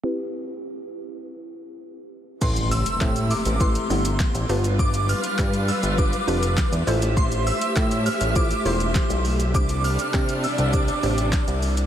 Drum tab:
CC |----------------|x---------------|----------------|----------------|
HH |----------------|-xox-xox-xox-xox|-xox-xox-xox-xox|-xox-xox-xox-xox|
SH |----------------|xxxxxxxxxxxxxxxx|xxxxxxxxxxxxxxxx|xxxxxxxxxxxxxxxx|
CP |----------------|----x-------x---|----x-------x---|----x-------x---|
SD |----------------|----o-------o---|----o-------o---|----o-------o---|
BD |----------------|o---o---o---o---|o---o---o---o---|o---o---o---o---|

CC |----------------|
HH |-xox-xox-xox-xox|
SH |xxxxxxxxxxxxxxxx|
CP |----x-------x---|
SD |----o-------o---|
BD |o---o---o---o---|